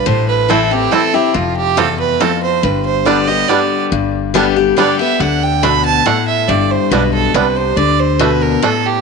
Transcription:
<<
  \new Staff \with { instrumentName = "Fiddle" } { \time 3/4 \key g \mixolydian \tempo 4 = 140 c''8 b'8 a'8 g'8 a'8 g'8 | f'8 g'8 a'8 b'8 a'8 c''8 | b'8 c''8 d''8 ees''8 d''8. r16 | \key g \major r2 d''8 e''8 |
fis''8 g''8 b''8 a''8 fis''8 e''8 | d''8 c''8 b'8 a'8 b'8 c''8 | d''8 c''8 b'8 bes'8 a'8 g'8 | }
  \new Staff \with { instrumentName = "Five-string banjo" } { \time 3/4 \key g \mixolydian r4 <a c' e'>8 r8 <a c' e'>8 r8 | r4 <a c' f'>8 r8 <a c' f'>8 r8 | r4 <g b d'>8 r8 <g b d'>8 r8 | \key g \major r4 <g b d'>8 r8 <g b d'>8 r8 |
r4 <a d'>8 r8 <a d'>8 r8 | r4 <g b d'>8 r8 <g b d'>8 r8 | r4 <a d'>8 r8 <a d'>8 r8 | }
  \new Staff \with { instrumentName = "Steel-string acoustic guitar" } { \clef bass \time 3/4 \key g \mixolydian << { r4 <e a c' e'>8 <c' e'>8 <e a c' e'>8 <c' e'>8 | r2. | r4 <d g b g'>8 <b g'>8 <d g b g'>4 | \key g \major r4 <d g b g'>8 <b g'>8 <d g b g'>8 <b g'>8 |
r2. | r2. | r2. | } \\ { a,2 r4 | f,4 e,4 f,4 | g,2 r4 | g,2 r4 |
d4 b,4 a,4 | g,4 b,4 c4 | d4 b,4 a,4 | } >> }
  \new Staff \with { instrumentName = "Upright bass" } { \clef bass \time 3/4 \key g \mixolydian a,,2. | f,,2. | g,,2. | \key g \major g,,2. |
d,2. | g,,4 b,,4 c,4 | d,2. | }
>>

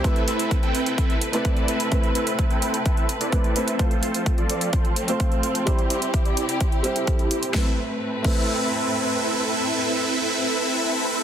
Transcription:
<<
  \new Staff \with { instrumentName = "Supersaw synth" } { \time 4/4 \key a \minor \tempo 4 = 128 <c' e' a' b' e''>8 <c' e' a' b' e''>8. <c' e' a' b' g''>8. <c' e' a' b' e''>8 r16 <c' e' a' b' d''>8. <c' e' a' b' e''>8 | <c' e' a' b' e''>8 <c' e' a' b' e''>8. <c' e' a' b' g''>8. <c' e' a' b' e''>8 r16 <c' e' a' b' d''>8. <c' e' a' b' e''>8 | <f' a' c''>8 <f' a' c''>8. <f' a' d''>8. <f' a' c''>8 r16 <f' a' c''>8. <f' a' c''>8 | <e' g' c''>8 <e' g' c''>8. <e' g' d''>8. <e' g' c''>8 r16 <e' g' a'>8. <e' g' c''>8 |
<c' e' a' b' e''>16 r4 r16 <c' e' a' b' e''>2~ <c' e' a' b' e''>8~ | <c' e' a' b' e''>1 | }
  \new Staff \with { instrumentName = "Felt piano" } { \time 4/4 \key a \minor <a c' e' b'>2~ <a c' e' b'>8. <a c' e' b'>4~ <a c' e' b'>16 | <a c' e' b'>2. <a c' e' b'>8 <a c' e' b'>8 | <a c' f' c''>2~ <a c' f' c''>8. <a c' f' c''>4~ <a c' f' c''>16 | <g c' e' c''>2~ <g c' e' c''>8 <g c' e' c''>4. |
<a c' e' b'>16 r4 r16 <a c' e' b'>2~ <a c' e' b'>8~ | <a c' e' b'>1 | }
  \new Staff \with { instrumentName = "String section" } { \time 4/4 \key a \minor <c a b'>1~ | <c a b'>1 | <f a c'>1 | <c e' g'>1 |
<a, a c' b'>1~ | <a, a c' b'>1 | }
  \new DrumStaff \with { instrumentName = "Drums" } \drummode { \time 4/4 <hh bd>16 hh16 hh16 hh16 <hh bd>16 hh16 hh16 hh16 <hh bd>16 hh16 hh16 hh16 <hh bd>16 hh16 hh16 hh16 | <hh bd>16 hh16 hh16 hh16 <hh bd>16 hh16 hh16 hh16 <hh bd>16 hh16 hh16 hh16 <hh bd>16 hh16 hh16 hh16 | <hh bd>16 hh16 hh16 hh16 <hh bd>16 hh16 hh16 hh16 <hh bd>16 hh16 hh16 hh16 <hh bd>16 hh16 hh16 hh16 | <hh bd>16 hh16 hh16 hh16 <hh bd>16 hh16 hh16 hh16 <hh bd>16 hh16 hh16 hh16 <hh bd>16 hh16 hh16 hh16 |
<bd sn>4 r8 <cymc bd>8 r4 r4 | r4 r4 r4 r4 | }
>>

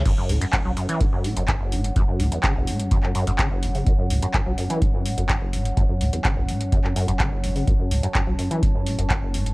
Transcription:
<<
  \new Staff \with { instrumentName = "Analog synth pad" } { \time 4/4 \key fis \minor \tempo 4 = 126 << { fis''1~ | fis''1~ | fis''1~ | fis''1 |
a''1 | } \\ { <fis cis' cis''>1~ | <fis cis' cis''>1~ | <fis cis' cis''>1~ | <fis cis' cis''>1~ |
<fis cis' cis''>1 | } >> }
  \new Staff \with { instrumentName = "Acid bass" } { \clef bass \time 4/4 \key fis \minor fis,16 fis,16 a,16 fis,16 fis,16 fis16 fis,16 e16 cis16 fis,16 a,16 fis,16 fis,16 fis,,16 a,16 fis,16 | fis,16 fis,16 a,16 e,16 cis16 fis,,16 a,16 fis,16 fis,16 fis,16 fis,16 fis,16 cis16 fis,,16 a,16 cis16 | fis,16 fis,16 a,16 fis,16 fis,16 fis16 fis,16 e16 cis16 fis,16 a,16 fis,16 fis,16 fis,,16 a,16 fis,16 | fis,16 fis,16 a,16 e,16 cis16 fis,,16 a,16 fis,16 fis,16 fis,16 fis,16 fis,16 cis16 fis,,16 a,16 cis16 |
fis,16 fis,16 a,16 fis,16 fis,16 fis16 fis,16 e16 cis16 fis,16 a,16 fis,16 fis,16 fis,,16 a,16 fis,16 | }
  \new Staff \with { instrumentName = "Sub bass" } { \clef bass \time 4/4 \key fis \minor fis,,16 r16 cis,16 r8 b,,16 r4 r16 fis,,4~ fis,,16 | fis,,16 r16 cis,16 r8 b,,16 r4 r16 fis,,4~ fis,,16 | fis,,16 r16 cis,16 r8 b,,16 r4 r16 fis,,4~ fis,,16 | fis,,16 r16 cis,16 r8 b,,16 r4 r16 fis,,4~ fis,,16 |
fis,,16 r16 cis,16 r8 b,,16 r4 r16 fis,,4~ fis,,16 | }
  \new DrumStaff \with { instrumentName = "Drums" } \drummode { \time 4/4 <cymc hh bd>8 hho16 hh16 <hc hh bd>8 hho16 hh16 <hh bd>8 hho16 hh16 <hc hh bd>8 hho16 hh16 | <hh bd>8 hho16 hh16 <hc hh bd>8 hho16 hh16 <hh bd>16 hc16 hho16 hh16 <hc hh bd>8 hho16 hho16 | <hh bd>8 hho16 hh16 <hc hh bd>8 hho16 hh16 <hh bd>8 hho16 hh16 <hc hh bd>8 hho16 hh16 | <hh bd>8 hho16 hh16 <hc hh bd>8 hho16 hh16 <hh bd>16 hc16 hho16 hh16 <hc hh bd>8 hho16 hho16 |
<hh bd>8 hho16 hh16 <hc hh bd>8 hho16 hh16 <hh bd>8 hho16 hh16 <hc hh bd>8 hho16 hh16 | }
>>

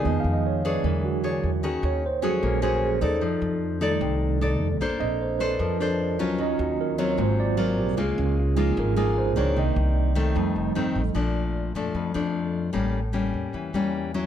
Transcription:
<<
  \new Staff \with { instrumentName = "Tine electric piano" } { \time 4/4 \key f \mixolydian \tempo 4 = 151 \tuplet 3/2 { ees''8 f''8 ees''8 } des''8 ces''8 bes'8 fis'8 r4 | r8 des''8 c''8 a'8 bes'8 c''8 aes'8 a'8~ | a'4 r2. | r8 ees''8 c''8 ces''8 bes'8 r4. |
ees''8 ges'8 bes'8 des''8 c''8 d''8 bes'8 g'8 | aes'8 des'8 f'8 aes'8 bes'8 aes'8 c''8 des''8 | ees''2. r4 | r1 |
r1 | }
  \new Staff \with { instrumentName = "Tine electric piano" } { \time 4/4 \key f \mixolydian <ees aes ces'>4. r8 <d fis gis>4. r8 | r4. <f ges aes des'>8 r2 | r4. <ees g a>8 r2 | r8 <c' d'>4. r2 |
<ges des' f'>8 r4. <ges bes c' f'>4. r8 | r4. <f bes ees'>8 r2 | <ees bes d''>2 <g a ees'>8 r4. | r1 |
r1 | }
  \new Staff \with { instrumentName = "Nylon-string guitar" } { \time 4/4 \key f \mixolydian << { <ces' ees' aes'>4. <d' aes' des''>4. <d' gis' cis''>8 r8 | <des' ges' aes'>4 r8 <des' ges' aes'>4 <des' ges' aes'>4 <ees' a' d''>8~ | <ees' a' d''>4. <ees' a' d''>4. <ees' a' d''>8 r8 | <d' a' c''>4. <d' a' c''>4 <d' a' c''>4 <ges des' f'>8~ |
<ges des' f'>4. <ges c' f'>4. <ges c' f'>4 | <aes bes f'>4. <aes bes f'>4 <aes bes f'>4 <ees bes d'>8~ | <ees bes d'>4. <ees a c'>4. <ees a c'>8 r8 | <f a d'>4. <f a d'>4 <f a d'>4. |
<g bes cis'>8 r8 <g bes cis'>4. <g bes cis'>4 <ges cis' e'>8 | } \\ { f2 e2 | ees2 bes2 | f2 c2 | bes2 f2 |
ees2 aes,2 | des2 aes,2 | c2 f,2 | bes,2 f,2 |
a,2 e2 | } >> }
  \new Staff \with { instrumentName = "Upright bass" } { \clef bass \time 4/4 \key f \mixolydian f,8 f,4. e,4. e,8 | ees,8 ees,4. bes,,4. ees,8 | f,8 f,4. c,4. f,8 | bes,,8 bes,,4. f,4. d,8 |
ees,8 ees,4. aes,,4. bes,,8 | des,8 des,4. aes,,4. des,8 | c,8 c,4. f,8 f,,8 g,,8 a,,8 | bes,,4. f,8 f,8 f,4. |
a,,4. e,8 e,8 e,4. | }
>>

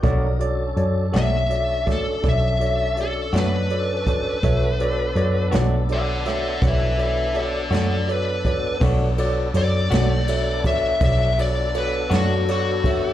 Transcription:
<<
  \new Staff \with { instrumentName = "Lead electric guitar" } { \time 12/8 \key b \minor \tempo 4. = 55 r4. e''4 a'8 e''4 a'8 b'4.~ | b'4. r8 <d'' fis''>8 <d'' fis''>8 <b' e''>8 <b' e''>8 <a' d''>8 <a' d''>8 b'4 | r4 d''4. e''8 e''8 d''8 b'8 fis'8 fis'4 | }
  \new Staff \with { instrumentName = "Tine electric piano" } { \time 12/8 \key b \minor <fis' a' cis'' d''>8 <fis' a' cis'' d''>8 <fis' a' cis'' d''>8 <fis' a' cis'' d''>8 <fis' a' cis'' d''>8 <fis' a' cis'' d''>8 <fis' a' cis'' d''>8 <fis' a' cis'' d''>8 <fis' a' cis'' d''>8 <fis' a' cis'' d''>8 <fis' a' cis'' d''>8 <fis' a' cis'' d''>8 | <fis' a' cis'' e''>8 <fis' a' cis'' d''>8 <fis' a' cis'' d''>8 <fis' a' cis'' d''>8 <fis' a' cis'' d''>8 <fis' a' cis'' e''>8 <fis' a' cis'' d''>8 <fis' a' cis'' d''>8 <fis' a' cis'' d''>8 <fis' a' cis'' d''>8 <fis' a' cis'' d''>8 <fis' a' cis'' d''>8 | <fis' a' cis'' d''>8 <fis' a' cis'' d''>8 <fis' a' cis'' d''>8 <fis' a' cis'' d''>8 <fis' a' cis'' e''>8 <fis' a' cis'' d''>8 <fis' a' cis'' d''>8 <fis' a' cis'' d''>8 <fis' a' cis'' d''>8 <fis' a' cis'' d''>8 <fis' a' cis'' d''>8 <fis' a' cis'' e''>8 | }
  \new Staff \with { instrumentName = "Tonewheel organ" } { \time 12/8 \key b \minor <d' dis' ais'>8 <cis' d' a'>1~ <cis' d' a'>4. | <b d' a'>1. | <b d' a'>1. | }
  \new Staff \with { instrumentName = "Clean electric guitar" } { \time 12/8 \key b \minor <b, a d' fis'>8 r4 <b, a d' fis'>8 r2 r8 <b, a d' fis'>8 r4 | r4. <b, a d' fis'>8 r2 r8 <b, a d' fis'>8 r4 | <b, a d' fis'>8 r4 <b, a d' fis'>8 r2 r8 <b, a d' fis'>8 r4 | }
  \new Staff \with { instrumentName = "Fingered electric bass" } { \clef bass \time 12/8 \key b \minor b,,4 fis,8 b,,4. b,,4. fis,4. | b,,4 fis,8 b,,4. b,,4. fis,4. | b,,4 fis,8 b,,4. b,,4. fis,4. | }
  \new DrumStaff \with { instrumentName = "Drums" } \drummode { \time 12/8 <hh bd>8 hh8 hh8 <hh sn>8 hh8 <hh bd sn>8 <hh bd>8 hh8 hh8 <hh sn>8 hh8 <hh bd>8 | <hh bd>8 hh8 hh8 <hh sn>8 hh8 <hh sn>8 <hh bd>8 hh8 hh8 <hh sn>8 hh8 <hh bd>8 | <bd cymr>8 cymr8 cymr8 <cymr sn>8 cymr8 <bd cymr>8 <bd cymr>8 cymr8 cymr8 <cymr sn>8 cymr8 <bd cymr>8 | }
>>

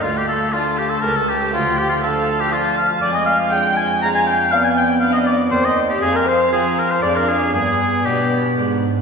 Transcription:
<<
  \new Staff \with { instrumentName = "Violin section" } { \time 3/4 \key d \phrygian \tempo 4 = 120 f''4 a''2 | g''4 f''4 a''4 | \key g \phrygian aes''4 g''4 f''4 | d''4 d''2 |
f''2 f''4 | d''2~ d''8 r8 | }
  \new Staff \with { instrumentName = "Oboe" } { \time 3/4 \key d \phrygian f'16 g'16 a'8 f'8 g'16 a'16 bes'16 a'16 g'8 | f'8 g'16 f'16 a'8. g'16 f'8 f''8 | \key g \phrygian d''16 ees''16 f''8 g''8 aes''8 bes''16 aes''16 g''8 | f''16 aes''16 g''8 f''16 ees''16 d''8 c''16 ees''16 r16 g'16 |
aes'16 bes'16 c''8 aes'8 bes'16 c''16 d''16 bes'16 aes'8 | aes'4 g'4 r4 | }
  \new Staff \with { instrumentName = "Violin section" } { \time 3/4 \key d \phrygian f'16 g'16 a'8 f'8 g'16 a'16 bes'16 a'16 g'8 | f'8 g'16 f'16 a'8. g'16 f'8 f''8 | \key g \phrygian d''16 ees''16 f''8 g''8 aes''8 bes''16 aes''16 g''8 | f''16 aes''16 g''8 f''16 ees''16 d''8 c''16 ees''16 r16 g'16 |
aes'16 bes'16 c''8 aes'8 bes'16 c''16 d''16 bes'16 aes'8 | aes'4 g'4 r4 | }
  \new Staff \with { instrumentName = "Harpsichord" } { \time 3/4 \key d \phrygian r4 <a d' f'>4 <a e'>4 | r4 <a d' f'>4 <a d' f'>4 | \key g \phrygian r4 <aes d' f'>4 <aes d' f'>4 | r4 <b d'>4 <c' g'>4 |
r4 <aes c' f'>4 <aes d' f'>4 | r4 <b d'>4 <b d'>4 | }
  \new Staff \with { instrumentName = "Harpsichord" } { \clef bass \time 3/4 \key d \phrygian d,2 cis,4 | d,2. | \key g \phrygian f,2.~ | f,2 ees,4 |
f,4 f4 f,4 | g,4 b,4 aes,4 | }
  \new Staff \with { instrumentName = "Viola section" } { \time 3/4 \key d \phrygian a2. | f2. | \key g \phrygian aes2. | b2 c'4 |
c'4 c'4 d'4 | b4 b4. r8 | }
  \new Staff \with { instrumentName = "Cello section" } { \clef bass \time 3/4 \key d \phrygian d,2 cis,4 | d,2. | \key g \phrygian f,2.~ | f,2 ees,4 |
f,4 f4 f,4 | g,4 b,4 aes,4 | }
>>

